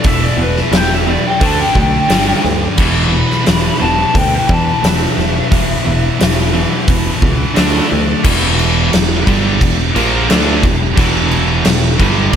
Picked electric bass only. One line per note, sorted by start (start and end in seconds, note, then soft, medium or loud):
0.05 0.27 E1 loud
0.37 0.60 E1 medium
0.71 1.16 E1 medium
1.41 1.63 D2 medium
1.75 1.97 B1 loud
2.10 2.32 G1 medium
2.44 2.66 D2 medium
2.79 3.22 E1 loud
3.48 3.69 E1 medium
3.82 4.03 E1 medium
4.15 4.37 D2 medium
4.49 4.71 E2 loud
4.84 5.06 E1 medium
5.17 5.39 E1 medium
5.52 5.73 E1 loud
5.87 6.08 E1 medium
6.22 6.65 E1 loud
6.88 7.10 E1 medium
7.22 7.44 C#2 loud
7.57 7.79 D2 medium
7.92 8.13 D2 medium
8.25 8.89 E1 medium
8.95 9.26 E1 medium
9.27 9.59 G1 medium
9.61 9.93 E1 medium
9.96 10.27 A#1 loud
10.31 10.62 D2 medium
10.63 10.95 E1 medium
10.97 11.62 E1 medium
11.65 11.97 E1 medium
12.00 12.31 G1 loud